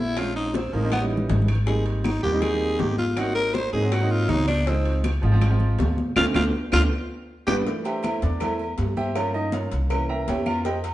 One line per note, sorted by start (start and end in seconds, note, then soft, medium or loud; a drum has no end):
0.00 0.68 A#1 medium
0.00 0.20 E4 loud
0.17 0.57 F3 medium
0.17 0.57 G#3 medium
0.17 0.57 C4 medium
0.17 0.57 C#4 medium
0.17 0.35 F4 loud
0.17 high bongo medium
0.17 high conga soft
0.17 high timbale loud
0.17 claves medium
0.35 0.56 D#4 loud
0.35 high bongo soft
0.35 high conga soft
0.54 0.75 C4 medium
0.54 high bongo medium
0.54 high conga loud
0.54 high timbale medium
0.54 low timbale medium
0.73 1.26 A1 medium
0.73 0.80 F3 medium
0.73 0.80 G#3 medium
0.73 0.92 A#3 medium
0.73 0.81 C4 medium
0.73 0.81 D#4 medium
0.73 high conga soft
0.82 0.92 F3 medium
0.82 0.93 G#3 medium
0.82 0.93 C4 medium
0.82 0.93 D#4 medium
0.92 1.04 B3 medium
0.92 high bongo medium
0.92 high conga medium
0.92 high timbale medium
0.92 claves medium
1.00 1.47 E3 medium
1.00 1.47 G3 medium
1.00 1.47 C#4 medium
1.00 1.48 D#4 medium
1.10 high bongo soft
1.17 low conga loud
1.29 2.17 G#1 medium
1.29 high bongo soft
1.29 low bongo medium
1.29 low conga loud
1.29 high timbale medium
1.29 low timbale medium
1.42 low conga medium
1.48 high bongo soft
1.48 high timbale loud
1.48 claves medium
1.55 low conga medium
1.66 2.06 G3 medium
1.66 2.07 A#3 medium
1.66 2.07 C4 medium
1.66 2.07 D#4 medium
1.66 1.84 G#4 medium
1.66 high bongo medium
1.66 high conga soft
1.86 2.03 C4 medium
1.86 high bongo soft
1.86 high conga soft
1.86 high timbale medium
2.04 2.22 D#4 medium
2.04 high bongo medium
2.04 high conga loud
2.04 high timbale medium
2.04 low timbale medium
2.04 claves medium
2.22 2.76 D#2 medium
2.22 2.30 G3 medium
2.22 2.30 A#3 medium
2.22 2.30 C4 medium
2.22 2.31 F4 medium
2.22 2.43 G4 loud
2.22 high conga soft
2.32 2.46 G3 medium
2.32 2.46 A#3 medium
2.32 2.46 C4 medium
2.32 2.47 D#4 medium
2.41 2.82 G#4 loud
2.41 high bongo medium
2.41 high conga soft
2.41 low conga medium
2.41 high timbale medium
2.41 claves medium
2.51 2.97 G3 medium
2.51 2.97 A#3 medium
2.51 2.98 C4 medium
2.51 2.98 D#4 medium
2.61 high bongo soft
2.61 high conga soft
2.79 3.67 G#1 medium
2.79 2.98 G4 medium
2.79 high bongo soft
2.79 low bongo medium
2.79 high conga medium
2.79 high timbale medium
2.79 low timbale medium
2.98 3.19 F4 medium
2.98 high bongo soft
2.98 high conga medium
3.16 3.56 F#3 medium
3.16 3.56 A#3 medium
3.16 3.57 C4 medium
3.16 3.57 D#4 medium
3.16 3.34 F#4 medium
3.16 high bongo medium
3.16 high conga soft
3.16 high timbale loud
3.16 claves medium
3.35 3.55 A#4 loud
3.35 high bongo soft
3.35 high conga soft
3.54 3.72 C5 loud
3.54 high bongo medium
3.54 high conga medium
3.54 high timbale medium
3.54 low timbale medium
3.73 4.25 G#2 medium
3.73 3.80 F#3 medium
3.73 3.80 A#3 medium
3.73 3.80 C4 medium
3.73 3.81 D#4 medium
3.73 3.94 G#4 loud
3.73 high conga soft
3.82 3.96 F#3 medium
3.82 3.96 A#3 medium
3.82 3.96 C4 medium
3.82 3.97 F#4 medium
3.92 4.12 F#4 medium
3.92 high bongo medium
3.92 high conga soft
3.92 high timbale medium
3.92 claves medium
4.01 4.47 F#3 medium
4.01 4.47 A#3 medium
4.01 4.48 C4 medium
4.01 4.48 D#4 medium
4.10 4.31 F4 loud
4.10 high bongo soft
4.10 high conga soft
4.29 5.17 C#2 medium
4.29 4.47 D#4 loud
4.29 high bongo soft
4.29 low bongo medium
4.29 high conga medium
4.29 high timbale medium
4.29 low timbale medium
4.48 4.69 D4 loud
4.48 high bongo soft
4.48 high conga medium
4.48 high timbale loud
4.48 claves medium
4.67 5.06 F3 medium
4.67 5.06 G#3 medium
4.67 5.05 C4 medium
4.67 5.07 C4 medium
4.67 5.07 D#4 medium
4.67 high bongo medium
4.67 high conga soft
4.85 high bongo soft
4.85 high conga soft
4.85 high timbale medium
5.04 high bongo medium
5.04 high conga loud
5.04 high timbale loud
5.04 low timbale medium
5.04 claves medium
5.22 5.75 G#1 loud
5.22 5.29 F3 medium
5.22 5.30 G#3 medium
5.22 5.30 C4 medium
5.22 5.30 F4 loud
5.22 high conga soft
5.32 5.45 F3 loud
5.32 5.46 G#3 medium
5.32 5.46 C4 medium
5.32 5.46 F4 loud
5.41 high bongo medium
5.41 high conga soft
5.41 low conga medium
5.41 high timbale medium
5.41 claves medium
5.49 5.96 F3 medium
5.49 5.96 G#3 medium
5.49 5.97 C4 medium
5.49 5.97 F4 loud
5.60 high bongo soft
5.60 high conga soft
5.60 low conga medium
5.79 6.14 D2 medium
5.79 high bongo soft
5.79 low bongo medium
5.79 high conga medium
5.79 high timbale medium
5.79 low timbale medium
5.98 high bongo soft
5.98 high conga medium
6.16 6.30 D2 loud
6.16 6.28 A3 medium
6.16 6.29 C4 loud
6.16 6.29 D4 medium
6.16 6.25 F4 loud
6.16 high bongo loud
6.16 high conga loud
6.16 high timbale loud
6.16 claves loud
6.34 6.49 D2 loud
6.34 6.47 A3 loud
6.34 6.48 C4 loud
6.34 6.48 D4 loud
6.34 6.44 F4 medium
6.34 high bongo loud
6.34 high conga loud
6.34 high timbale loud
6.34 claves loud
6.72 6.86 D2 loud
6.72 6.85 A3 medium
6.72 6.85 C4 medium
6.72 6.85 D4 loud
6.72 6.82 F4 loud
6.72 high bongo medium
6.72 high conga loud
6.72 high timbale loud
6.72 claves loud
7.47 7.61 G1 medium
7.47 7.60 G3 loud
7.47 7.60 B3 loud
7.47 7.60 D4 loud
7.47 7.56 G4 loud
7.47 high bongo loud
7.47 high conga loud
7.47 high timbale loud
7.47 claves loud
7.66 9.11 E3 medium
7.66 9.11 A3 soft
7.66 8.22 D4 medium
7.66 cowbell loud
7.66 high conga soft
7.85 8.03 G4 medium
7.85 8.03 C5 medium
7.85 8.02 E5 medium
7.85 8.03 G5 medium
7.85 cowbell medium
7.85 high conga soft
7.85 low agogo medium
8.03 8.22 E4 medium
8.03 8.22 A4 medium
8.03 8.22 C5 medium
8.03 8.22 E5 medium
8.03 cowbell medium
8.03 high conga loud
8.03 low timbale medium
8.03 low agogo loud
8.03 claves medium
8.22 8.74 E2 medium
8.22 8.41 D4 medium
8.22 8.41 D5 medium
8.22 cowbell medium
8.22 high conga soft
8.40 8.60 E4 medium
8.40 8.60 A4 medium
8.40 8.60 C5 medium
8.40 8.59 E5 medium
8.40 cowbell loud
8.40 high conga soft
8.40 low conga medium
8.40 low agogo loud
8.40 claves medium
8.59 high conga soft
8.59 low agogo medium
8.78 9.66 G2 medium
8.78 cowbell medium
8.78 high conga medium
8.78 low timbale medium
8.97 9.15 G4 medium
8.97 9.15 C5 medium
8.97 9.15 E5 medium
8.97 9.15 G5 loud
8.97 high conga medium
8.97 low agogo medium
9.15 9.86 F3 medium
9.15 9.86 A#3 soft
9.15 9.87 C#4 medium
9.15 9.34 F4 medium
9.15 9.34 A#4 medium
9.15 9.34 C#5 medium
9.15 9.34 F5 medium
9.15 cowbell loud
9.15 high conga soft
9.15 low agogo loud
9.15 claves medium
9.34 9.53 D#4 medium
9.34 9.52 D#5 medium
9.34 high conga soft
9.34 low agogo medium
9.52 9.72 F4 medium
9.52 9.72 A#4 medium
9.52 9.72 C#5 medium
9.52 9.71 F5 medium
9.52 cowbell medium
9.52 high conga loud
9.52 low timbale medium
9.71 10.24 C2 medium
9.71 cowbell medium
9.71 high conga soft
9.90 10.61 E3 medium
9.90 10.62 A#3 medium
9.90 10.62 C#4 medium
9.90 cowbell loud
9.90 high conga soft
9.90 low agogo loud
9.90 claves medium
10.09 10.28 A#4 medium
10.09 10.28 E5 medium
10.09 10.28 G5 medium
10.09 10.27 A#5 loud
10.09 high conga soft
10.28 10.94 F2 medium
10.28 10.47 G4 medium
10.28 10.47 C#5 medium
10.28 10.47 E5 medium
10.28 10.47 G5 medium
10.28 cowbell medium
10.28 high conga medium
10.28 low timbale medium
10.28 low agogo medium
10.46 10.65 F4 medium
10.46 10.65 F5 medium
10.46 high conga medium
10.46 low agogo loud
10.46 claves medium
10.65 10.77 G4 medium
10.65 10.77 C5 medium
10.65 10.77 D#5 medium
10.65 10.77 G5 loud
10.65 cowbell loud
10.65 high conga soft
10.84 cowbell medium
10.84 high conga soft
10.84 low agogo medium